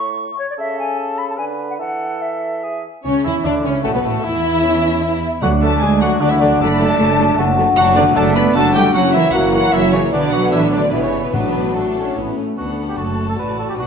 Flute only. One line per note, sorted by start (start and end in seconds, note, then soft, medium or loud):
0.00 0.38 C#6 medium
0.38 0.48 C#5 medium
0.50 0.54 D5 medium
0.59 0.78 E5 medium
0.79 0.99 G#5 medium
0.97 1.19 A5 medium
1.18 1.28 B5 medium
1.30 1.34 A5 medium
1.38 1.45 G#5 medium
1.70 1.74 F#5 medium
1.80 2.23 F#5 medium
2.21 2.84 E5 medium